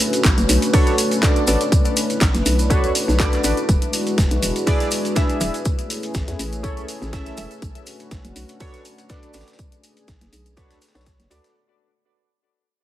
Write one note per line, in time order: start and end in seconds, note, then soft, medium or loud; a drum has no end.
0.00 3.65 A3 medium
0.00 3.65 C#4 medium
0.00 5.61 D4 medium
0.00 1.70 F#4 medium
0.00 11.52 B4 medium
0.00 open hi-hat loud
0.00 tambourine medium
0.00 maracas medium
0.13 closed hi-hat soft
0.13 maracas soft
0.24 0.33 B1 loud
0.24 kick loud
0.24 snare loud
0.24 clap loud
0.24 closed hi-hat medium
0.24 tambourine medium
0.24 maracas medium
0.38 0.45 F#1 medium
0.38 closed hi-hat soft
0.38 maracas soft
0.49 0.58 B1 medium
0.49 open hi-hat loud
0.49 tambourine medium
0.49 maracas loud
0.62 closed hi-hat soft
0.62 maracas soft
0.73 0.95 D4 loud
0.73 0.95 F#4 medium
0.73 0.95 A4 medium
0.73 0.95 B4 medium
0.73 0.95 C#5 loud
0.73 kick loud
0.73 closed hi-hat medium
0.73 open hi-hat medium
0.73 maracas soft
0.87 snare medium
0.87 closed hi-hat medium
0.87 maracas soft
0.98 open hi-hat loud
0.98 tambourine medium
0.98 maracas medium
1.11 closed hi-hat soft
1.11 maracas soft
1.22 1.44 D4 medium
1.22 1.45 F#4 medium
1.22 1.45 A4 medium
1.22 1.45 B4 medium
1.22 1.45 D5 medium
1.22 kick loud
1.22 snare loud
1.22 clap loud
1.22 closed hi-hat medium
1.22 tambourine medium
1.22 maracas soft
1.36 closed hi-hat medium
1.36 maracas soft
1.47 1.56 A1 medium
1.47 1.62 D4 medium
1.47 1.62 F#4 medium
1.47 1.62 A4 medium
1.47 1.62 B4 medium
1.47 1.63 D5 medium
1.47 open hi-hat loud
1.47 tambourine medium
1.47 maracas loud
1.61 closed hi-hat soft
1.61 maracas soft
1.72 5.62 E4 medium
1.72 kick loud
1.72 closed hi-hat medium
1.72 tambourine medium
1.72 maracas medium
1.85 closed hi-hat soft
1.85 maracas soft
1.97 open hi-hat loud
1.97 tambourine medium
1.97 maracas loud
2.10 closed hi-hat soft
2.10 maracas soft
2.21 2.30 B1 loud
2.21 kick loud
2.21 snare loud
2.21 clap loud
2.21 closed hi-hat medium
2.21 tambourine medium
2.21 maracas medium
2.34 2.42 F#1 loud
2.34 snare soft
2.34 closed hi-hat medium
2.34 maracas soft
2.46 2.85 B1 medium
2.46 open hi-hat loud
2.46 tambourine medium
2.46 maracas medium
2.59 closed hi-hat soft
2.59 maracas soft
2.70 2.91 D4 loud
2.70 2.91 F#4 medium
2.70 2.92 A4 medium
2.70 2.92 B4 medium
2.70 2.92 C#5 loud
2.70 kick loud
2.70 closed hi-hat medium
2.70 tambourine medium
2.70 maracas soft
2.84 2.91 D2 loud
2.84 closed hi-hat soft
2.84 maracas soft
2.95 open hi-hat loud
2.95 tambourine medium
2.95 maracas medium
3.08 3.38 B1 loud
3.08 snare soft
3.08 maracas soft
3.19 3.41 D4 medium
3.19 3.41 F#4 medium
3.19 3.41 A4 medium
3.19 3.42 B4 medium
3.19 3.42 D5 medium
3.19 kick loud
3.19 snare loud
3.19 clap loud
3.19 closed hi-hat medium
3.19 tambourine medium
3.19 maracas soft
3.33 snare soft
3.33 clap soft
3.33 closed hi-hat soft
3.33 maracas soft
3.44 3.53 A1 medium
3.44 3.59 D4 medium
3.44 3.59 F#4 medium
3.44 3.59 A4 medium
3.44 3.59 B4 medium
3.44 3.59 D5 medium
3.44 open hi-hat loud
3.44 tambourine medium
3.44 maracas loud
3.57 closed hi-hat soft
3.57 maracas soft
3.69 3.78 E1 medium
3.69 5.64 G#3 medium
3.69 5.64 F#4 medium
3.69 kick loud
3.69 closed hi-hat medium
3.69 tambourine medium
3.69 maracas soft
3.82 closed hi-hat soft
3.82 maracas soft
3.93 open hi-hat loud
3.93 tambourine medium
3.93 maracas loud
4.07 closed hi-hat soft
4.07 maracas soft
4.18 4.27 E1 medium
4.18 kick loud
4.18 snare loud
4.18 closed hi-hat medium
4.18 tambourine medium
4.18 maracas medium
4.31 4.39 B1 medium
4.31 closed hi-hat soft
4.31 maracas soft
4.42 4.51 E1 medium
4.42 open hi-hat loud
4.42 tambourine medium
4.42 maracas medium
4.56 closed hi-hat soft
4.56 maracas soft
4.67 4.88 D4 medium
4.67 4.88 E4 medium
4.67 4.88 G#4 medium
4.67 4.88 B4 medium
4.67 4.89 D5 loud
4.67 kick loud
4.67 closed hi-hat medium
4.67 open hi-hat medium
4.67 maracas medium
4.80 snare medium
4.80 closed hi-hat soft
4.80 maracas soft
4.91 open hi-hat loud
4.91 tambourine medium
4.91 maracas medium
5.05 closed hi-hat soft
5.05 maracas soft
5.16 5.38 D4 medium
5.16 5.38 E4 medium
5.16 5.38 G#4 medium
5.16 5.38 B4 medium
5.16 5.38 E5 medium
5.16 kick loud
5.16 snare loud
5.16 closed hi-hat medium
5.16 tambourine medium
5.16 maracas soft
5.29 closed hi-hat soft
5.29 maracas soft
5.40 5.50 D1 medium
5.40 5.55 D4 medium
5.40 5.56 E4 medium
5.40 5.56 G#4 medium
5.40 5.56 B4 medium
5.40 5.56 E5 medium
5.40 open hi-hat loud
5.40 tambourine medium
5.40 maracas loud
5.54 closed hi-hat soft
5.54 maracas soft
5.65 11.52 A3 medium
5.65 11.52 C#4 medium
5.65 7.60 E4 medium
5.65 7.60 G#4 medium
5.65 kick loud
5.65 closed hi-hat medium
5.65 tambourine medium
5.65 maracas soft
5.79 closed hi-hat medium
5.79 maracas soft
5.90 open hi-hat loud
5.90 tambourine medium
5.90 maracas medium
6.03 closed hi-hat soft
6.03 maracas soft
6.14 6.23 A1 loud
6.14 kick medium
6.14 snare loud
6.14 closed hi-hat medium
6.14 tambourine medium
6.14 maracas soft
6.28 6.35 E2 loud
6.28 snare soft
6.28 closed hi-hat medium
6.28 maracas soft
6.39 6.79 A1 medium
6.39 open hi-hat medium
6.39 tambourine medium
6.39 maracas medium
6.53 closed hi-hat soft
6.53 maracas soft
6.63 6.85 C#4 medium
6.63 6.85 E4 medium
6.63 6.85 G#4 medium
6.63 6.85 A4 medium
6.63 6.85 C#5 loud
6.63 kick loud
6.63 closed hi-hat medium
6.63 tambourine medium
6.63 maracas soft
6.77 6.85 C#2 loud
6.77 closed hi-hat soft
6.77 maracas soft
6.88 open hi-hat loud
6.88 tambourine medium
6.88 maracas medium
7.02 7.31 A1 loud
7.02 snare soft
7.02 maracas soft
7.12 7.35 C#4 medium
7.12 7.35 E4 medium
7.12 7.35 G#4 medium
7.12 7.35 A4 medium
7.12 7.35 E5 medium
7.12 kick loud
7.12 snare loud
7.12 closed hi-hat medium
7.12 tambourine medium
7.12 maracas soft
7.26 snare soft
7.26 closed hi-hat soft
7.26 maracas soft
7.37 7.46 E1 medium
7.37 7.52 C#4 medium
7.37 7.52 E4 medium
7.37 7.53 G#4 medium
7.37 7.53 A4 medium
7.37 7.53 E5 medium
7.37 open hi-hat loud
7.37 tambourine medium
7.37 maracas medium
7.51 closed hi-hat soft
7.51 maracas soft
7.62 7.71 B1 medium
7.62 11.52 D4 medium
7.62 9.57 F#4 medium
7.62 kick loud
7.62 closed hi-hat medium
7.62 tambourine medium
7.62 maracas soft
7.75 closed hi-hat medium
7.75 maracas soft
7.87 open hi-hat loud
7.87 tambourine medium
7.87 maracas medium
7.99 closed hi-hat soft
7.99 maracas soft
8.11 8.20 B1 medium
8.11 kick loud
8.11 snare loud
8.11 closed hi-hat medium
8.11 tambourine medium
8.11 maracas soft
8.25 8.32 F#1 loud
8.25 closed hi-hat medium
8.25 maracas soft
8.36 8.45 B1 medium
8.36 open hi-hat medium
8.36 tambourine medium
8.36 maracas medium
8.48 closed hi-hat soft
8.48 maracas soft
8.60 8.82 D4 medium
8.60 8.82 F#4 medium
8.60 8.82 A4 medium
8.60 8.82 B4 medium
8.60 8.82 C#5 loud
8.60 kick loud
8.60 closed hi-hat medium
8.60 open hi-hat medium
8.60 maracas soft
8.74 snare medium
8.74 closed hi-hat medium
8.74 maracas soft
8.85 open hi-hat medium
8.85 tambourine medium
8.85 maracas medium
8.98 closed hi-hat soft
8.98 maracas soft
9.09 9.31 D4 medium
9.09 9.31 F#4 medium
9.09 9.32 A4 medium
9.09 9.32 B4 medium
9.09 9.32 D5 medium
9.09 kick loud
9.09 snare loud
9.09 closed hi-hat medium
9.09 tambourine medium
9.09 maracas soft
9.23 closed hi-hat medium
9.23 maracas soft
9.34 9.43 A1 medium
9.34 9.49 D4 medium
9.34 9.49 F#4 medium
9.34 9.49 A4 medium
9.34 9.49 B4 medium
9.34 9.49 D5 medium
9.34 snare medium
9.34 open hi-hat medium
9.34 tambourine medium
9.34 maracas medium
9.41 snare medium
9.41 tambourine medium
9.48 snare medium
9.48 closed hi-hat soft
9.48 tambourine medium
9.48 maracas soft
9.53 snare medium
9.53 tambourine medium
9.59 11.54 G#4 medium
9.59 kick loud
9.59 closed hi-hat medium
9.59 tambourine medium
9.59 maracas medium
9.72 closed hi-hat medium
9.72 maracas soft
9.84 open hi-hat medium
9.84 tambourine medium
9.84 maracas medium
9.97 closed hi-hat soft
9.97 maracas soft
10.08 10.17 B1 medium
10.08 kick medium
10.08 snare loud
10.08 closed hi-hat medium
10.08 tambourine medium
10.08 maracas soft
10.21 10.29 F#1 loud
10.21 snare soft
10.21 closed hi-hat medium
10.21 maracas soft
10.33 10.72 B1 medium
10.33 open hi-hat medium
10.33 tambourine medium
10.33 maracas medium
10.46 closed hi-hat soft
10.46 maracas soft
10.57 10.78 D4 medium
10.57 10.78 F#4 medium
10.57 10.78 A4 medium
10.57 10.79 B4 medium
10.57 10.79 C#5 loud
10.57 kick loud
10.57 snare loud
10.57 closed hi-hat medium
10.57 tambourine medium
10.57 maracas soft
10.71 10.78 D2 loud
10.71 snare medium
10.71 closed hi-hat medium
10.71 tambourine medium
10.71 maracas soft
10.82 snare medium
10.82 open hi-hat loud
10.82 tambourine medium
10.82 maracas medium
10.88 snare medium
10.88 tambourine medium
10.95 11.19 B1 loud
10.95 11.08 D4 medium
10.95 11.08 F#4 medium
10.95 11.08 A4 medium
10.95 11.08 B4 medium
10.95 11.09 C#5 medium
10.95 snare medium
10.95 tambourine medium
10.95 maracas soft
11.01 snare medium
11.01 tambourine medium
11.06 kick loud
11.06 snare loud
11.06 closed hi-hat medium
11.06 tambourine medium
11.06 maracas soft
11.20 11.27 F#1 medium
11.20 snare soft
11.20 closed hi-hat medium
11.20 maracas soft
11.30 11.40 D2 medium
11.30 11.53 D4 medium
11.30 11.54 F#4 medium
11.30 11.54 A4 medium
11.30 11.54 B4 medium
11.30 11.54 D5 medium
11.30 snare loud
11.30 open hi-hat medium
11.30 tambourine medium
11.30 maracas medium
11.44 snare medium
11.44 closed hi-hat soft
11.44 tambourine medium
11.44 maracas soft